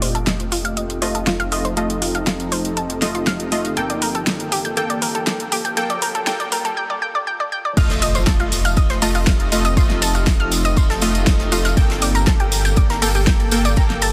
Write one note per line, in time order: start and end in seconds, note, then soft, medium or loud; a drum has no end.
0.00 3.75 F1 medium
0.00 3.73 F3 medium
0.00 0.99 A3 medium
0.00 3.73 C4 medium
0.00 3.73 D#4 medium
0.00 0.99 F4 medium
0.00 5.73 G4 medium
0.00 3.73 A4 medium
0.00 0.08 C5 medium
0.00 0.99 D#5 medium
0.00 open hi-hat loud
0.00 riser medium
0.15 0.21 A4 medium
0.15 closed hi-hat soft
0.27 snare loud
0.27 closed hi-hat medium
0.40 closed hi-hat soft
0.52 0.58 F4 medium
0.52 open hi-hat medium
0.65 0.71 F5 medium
0.65 closed hi-hat soft
0.77 0.86 D#5 medium
0.77 closed hi-hat medium
0.90 closed hi-hat soft
1.02 1.49 A3 medium
1.02 1.49 F4 medium
1.02 1.06 C5 medium
1.02 1.49 D#5 loud
1.02 open hi-hat medium
1.15 1.21 A4 medium
1.15 closed hi-hat soft
1.27 1.36 F4 medium
1.27 snare loud
1.27 closed hi-hat medium
1.40 1.46 F5 loud
1.40 closed hi-hat soft
1.52 1.74 A3 medium
1.52 1.74 F4 medium
1.52 1.61 D#5 medium
1.52 1.74 D#5 medium
1.52 open hi-hat medium
1.65 1.71 C5 medium
1.65 closed hi-hat soft
1.77 2.99 A3 medium
1.77 2.99 F4 medium
1.77 1.86 A4 medium
1.77 2.99 D#5 loud
1.77 closed hi-hat medium
1.90 closed hi-hat soft
2.02 2.06 F4 medium
2.02 open hi-hat loud
2.15 2.18 F5 medium
2.15 closed hi-hat soft
2.27 2.31 F4 medium
2.27 snare loud
2.27 closed hi-hat medium
2.40 closed hi-hat soft
2.52 2.61 C5 medium
2.52 open hi-hat medium
2.65 closed hi-hat soft
2.77 2.86 A4 medium
2.77 closed hi-hat medium
2.90 closed hi-hat soft
3.02 3.49 A3 medium
3.02 3.49 F4 medium
3.02 3.49 D#5 loud
3.02 snare medium
3.02 open hi-hat loud
3.15 3.18 F4 medium
3.15 closed hi-hat soft
3.27 3.33 F5 loud
3.27 snare loud
3.27 closed hi-hat medium
3.40 closed hi-hat soft
3.52 3.74 A3 medium
3.52 3.74 F4 medium
3.52 3.74 D#5 medium
3.52 open hi-hat medium
3.65 closed hi-hat soft
3.77 6.77 G1 medium
3.77 6.74 A#3 medium
3.77 4.75 A#3 medium
3.77 6.74 A4 medium
3.77 4.75 A4 medium
3.77 3.83 G5 medium
3.77 4.75 G5 medium
3.77 closed hi-hat medium
3.90 3.93 D5 medium
3.90 closed hi-hat soft
4.02 4.08 A#4 medium
4.02 open hi-hat loud
4.15 4.21 A4 medium
4.15 closed hi-hat soft
4.27 snare loud
4.27 closed hi-hat medium
4.40 closed hi-hat soft
4.52 4.58 G4 medium
4.52 open hi-hat medium
4.65 4.71 G5 medium
4.65 closed hi-hat soft
4.77 5.75 A#3 medium
4.77 5.75 A4 medium
4.77 4.83 G5 medium
4.77 5.75 G5 medium
4.77 closed hi-hat medium
4.90 4.93 D5 medium
4.90 closed hi-hat soft
5.02 5.08 A#4 medium
5.02 open hi-hat loud
5.15 5.21 A4 medium
5.15 closed hi-hat soft
5.27 snare loud
5.27 closed hi-hat medium
5.40 closed hi-hat soft
5.52 5.58 G4 loud
5.52 open hi-hat medium
5.65 5.71 G5 medium
5.65 closed hi-hat soft
5.77 6.25 A#3 medium
5.77 6.25 A4 medium
5.77 5.83 G5 medium
5.77 6.25 G5 loud
5.77 closed hi-hat medium
5.90 5.93 D5 medium
5.90 closed hi-hat soft
6.02 6.08 A#4 medium
6.02 open hi-hat loud
6.15 6.21 A4 medium
6.15 closed hi-hat soft
6.27 6.75 A#3 medium
6.27 6.75 A4 medium
6.27 6.33 G5 medium
6.27 6.75 G5 medium
6.27 snare loud
6.27 closed hi-hat medium
6.40 6.43 D5 medium
6.40 closed hi-hat soft
6.52 6.58 A#4 medium
6.52 open hi-hat medium
6.65 6.71 A4 medium
6.65 closed hi-hat soft
6.77 6.83 G5 medium
6.90 6.93 D5 medium
7.02 7.08 G5 medium
7.15 7.18 D5 medium
7.27 7.33 G5 medium
7.40 7.43 D5 medium
7.52 7.58 G5 medium
7.65 7.68 D5 medium
7.77 11.75 F1 medium
7.77 11.73 F3 medium
7.77 8.99 A3 medium
7.77 11.73 C4 medium
7.77 11.73 D#4 medium
7.77 8.99 F4 medium
7.77 14.12 G4 medium
7.77 11.73 A4 medium
7.77 8.99 D#5 loud
7.77 7.86 F5 loud
7.77 7.86 F6 medium
7.77 kick loud
7.77 closed hi-hat medium
7.77 crash loud
7.77 ride medium
7.77 tambourine soft
7.77 impact medium
7.90 snare medium
7.90 closed hi-hat soft
8.02 8.11 D#5 medium
8.02 8.11 D#6 medium
8.02 open hi-hat loud
8.02 ride medium
8.02 tambourine medium
8.15 8.24 C5 medium
8.15 8.24 C6 medium
8.15 closed hi-hat soft
8.15 tambourine soft
8.26 8.33 A4 medium
8.26 8.33 A5 medium
8.26 kick loud
8.26 snare loud
8.26 closed hi-hat medium
8.26 ride medium
8.26 tambourine soft
8.40 8.46 F4 medium
8.40 8.46 F5 medium
8.40 closed hi-hat soft
8.52 open hi-hat medium
8.52 ride medium
8.52 tambourine loud
8.64 8.71 F5 medium
8.64 8.71 F6 medium
8.64 closed hi-hat soft
8.64 ride soft
8.64 tambourine soft
8.77 8.86 D#5 medium
8.77 8.86 D#6 medium
8.77 kick loud
8.77 closed hi-hat medium
8.77 ride medium
8.77 tambourine soft
8.90 8.99 C5 medium
8.90 8.99 C6 medium
8.90 snare soft
8.90 closed hi-hat soft
9.02 9.49 A3 medium
9.02 9.49 F4 medium
9.02 9.11 A4 medium
9.02 9.49 D#5 loud
9.02 9.11 A5 medium
9.02 open hi-hat medium
9.02 open hi-hat loud
9.02 tambourine loud
9.15 9.24 F4 medium
9.15 9.24 F5 medium
9.15 closed hi-hat soft
9.15 tambourine medium
9.26 9.33 F5 medium
9.26 9.33 F6 medium
9.26 kick loud
9.26 snare loud
9.26 closed hi-hat medium
9.26 ride medium
9.26 tambourine soft
9.40 closed hi-hat soft
9.52 9.74 A3 medium
9.52 9.74 F4 medium
9.52 9.74 D#5 medium
9.52 open hi-hat medium
9.52 ride medium
9.52 tambourine medium
9.65 9.71 D#5 medium
9.65 9.71 D#6 medium
9.65 closed hi-hat soft
9.65 ride soft
9.65 tambourine medium
9.77 10.99 A3 medium
9.77 10.99 F4 medium
9.77 9.83 C5 medium
9.77 10.99 D#5 loud
9.77 9.83 C6 medium
9.77 kick loud
9.77 closed hi-hat medium
9.77 ride medium
9.77 tambourine soft
9.90 snare soft
9.90 closed hi-hat soft
10.02 10.11 A4 loud
10.02 10.11 A5 medium
10.02 open hi-hat loud
10.02 ride medium
10.02 tambourine loud
10.15 10.24 F4 medium
10.15 10.24 F5 medium
10.15 closed hi-hat soft
10.15 tambourine soft
10.27 kick loud
10.27 snare loud
10.27 closed hi-hat medium
10.27 ride medium
10.27 tambourine soft
10.40 10.49 F5 loud
10.40 10.49 F6 medium
10.40 closed hi-hat soft
10.51 snare soft
10.51 open hi-hat loud
10.51 ride medium
10.51 tambourine loud
10.65 10.71 D#5 medium
10.65 10.71 D#6 medium
10.65 closed hi-hat soft
10.65 tambourine medium
10.77 10.83 C5 medium
10.77 10.83 C6 medium
10.77 kick loud
10.77 closed hi-hat medium
10.77 ride loud
10.77 tambourine soft
10.90 10.93 A4 loud
10.90 10.93 A5 medium
10.90 snare soft
10.90 closed hi-hat soft
11.01 11.49 A3 medium
11.01 11.49 F4 medium
11.01 11.49 D#5 loud
11.01 open hi-hat loud
11.01 ride medium
11.01 tambourine medium
11.15 closed hi-hat soft
11.15 tambourine soft
11.26 kick loud
11.26 snare loud
11.26 closed hi-hat medium
11.26 ride medium
11.26 tambourine soft
11.39 snare medium
11.39 closed hi-hat soft
11.51 11.74 A3 medium
11.51 11.58 F4 loud
11.51 11.74 F4 medium
11.51 11.74 D#5 medium
11.51 11.58 F5 medium
11.51 open hi-hat medium
11.51 ride medium
11.51 tambourine loud
11.65 11.71 F5 medium
11.65 11.71 F6 medium
11.65 snare medium
11.65 closed hi-hat soft
11.65 tambourine soft
11.77 14.12 G1 medium
11.77 14.12 A#3 medium
11.77 12.99 A#3 medium
11.77 14.12 A4 medium
11.77 12.99 A4 medium
11.77 11.86 G5 loud
11.77 12.99 G5 loud
11.77 11.86 G6 medium
11.77 kick loud
11.77 closed hi-hat medium
11.77 ride medium
11.77 tambourine soft
11.90 snare medium
11.90 closed hi-hat soft
12.02 12.11 D5 medium
12.02 12.11 D6 medium
12.02 open hi-hat loud
12.02 ride medium
12.02 tambourine medium
12.15 12.24 A#4 medium
12.15 12.24 A#5 medium
12.15 closed hi-hat soft
12.15 tambourine medium
12.27 12.33 A4 medium
12.27 12.33 A5 medium
12.27 kick loud
12.27 snare loud
12.27 closed hi-hat medium
12.27 ride medium
12.27 tambourine soft
12.40 12.46 G4 medium
12.40 12.46 G5 medium
12.40 closed hi-hat soft
12.52 open hi-hat medium
12.52 ride medium
12.52 tambourine loud
12.65 12.71 G5 medium
12.65 12.71 G6 medium
12.65 closed hi-hat soft
12.65 ride soft
12.65 tambourine medium
12.76 12.86 D5 medium
12.76 12.86 D6 medium
12.76 kick loud
12.76 closed hi-hat medium
12.76 ride medium
12.76 tambourine soft
12.90 12.99 A#4 medium
12.90 12.99 A#5 medium
12.90 snare soft
12.90 closed hi-hat soft
13.02 13.49 A#3 medium
13.02 13.49 A4 medium
13.02 13.11 A4 medium
13.02 13.49 G5 loud
13.02 13.11 A5 medium
13.02 open hi-hat medium
13.02 open hi-hat loud
13.02 tambourine loud
13.15 13.24 G4 medium
13.15 13.24 G5 medium
13.15 closed hi-hat soft
13.15 tambourine medium
13.27 13.33 G5 medium
13.27 13.33 G6 medium
13.27 kick loud
13.27 snare loud
13.27 closed hi-hat medium
13.27 ride medium
13.27 tambourine soft
13.40 closed hi-hat soft
13.51 13.74 A#3 medium
13.51 13.74 A4 medium
13.51 13.74 G5 medium
13.51 open hi-hat medium
13.51 ride medium
13.51 tambourine loud
13.65 13.71 D5 medium
13.65 13.71 D6 medium
13.65 closed hi-hat soft
13.65 ride soft
13.65 tambourine medium
13.76 14.12 A#3 medium
13.76 14.12 A4 medium
13.76 13.83 A#4 medium
13.76 14.12 G5 loud
13.76 13.83 A#5 medium
13.76 kick loud
13.76 closed hi-hat medium
13.76 ride medium
13.76 tambourine soft
13.90 snare soft
13.90 closed hi-hat soft
14.02 14.11 A4 loud
14.02 14.11 A5 medium
14.02 open hi-hat loud
14.02 ride medium
14.02 tambourine medium